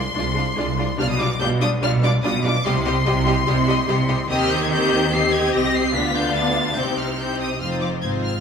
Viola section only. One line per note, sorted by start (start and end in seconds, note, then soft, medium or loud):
0.14 0.23 G#3 medium
0.14 0.22 D4 medium
0.35 0.43 G#3 medium
0.35 0.44 D4 medium
0.56 0.65 G#3 medium
0.56 0.64 D4 medium
0.77 0.85 G#3 medium
0.77 0.85 D4 medium
0.98 1.06 G3 medium
0.98 1.06 D4 medium
1.19 1.28 G3 medium
1.19 1.27 D4 medium
1.40 1.49 G3 medium
1.40 1.48 D4 medium
1.61 1.70 G3 medium
1.61 1.69 D4 medium
1.82 1.90 G3 loud
1.82 1.90 D4 loud
2.03 2.11 G3 medium
2.03 2.12 D4 medium
2.24 2.32 G3 medium
2.24 2.32 D4 medium
2.45 2.54 G3 medium
2.45 2.53 D4 medium
2.66 2.74 G3 loud
2.66 2.74 G4 loud
2.87 2.95 G3 medium
2.87 2.95 G4 medium
3.06 3.14 G3 medium
3.06 3.14 G4 medium
3.27 3.35 G3 loud
3.27 3.35 G4 loud
3.46 3.55 G3 loud
3.46 3.54 G4 loud
3.67 3.75 G3 medium
3.67 3.75 G4 medium
3.88 3.96 G3 medium
3.88 3.96 G4 medium
4.09 4.17 G3 medium
4.09 4.17 G4 medium
4.29 4.68 C4 loud
4.29 4.68 G4 loud
4.71 5.11 C4 loud
4.71 5.11 G4 medium
5.12 5.93 C4 loud
5.12 5.93 G4 loud
5.95 6.78 B3 medium
5.95 6.78 D4 loud
6.78 7.19 C4 medium
6.78 7.19 D#4 medium
7.20 7.60 C4 medium
7.20 7.61 D#4 medium
7.61 8.00 C4 medium
7.61 8.00 D#4 medium
8.04 8.40 C4 medium
8.04 8.40 D#4 medium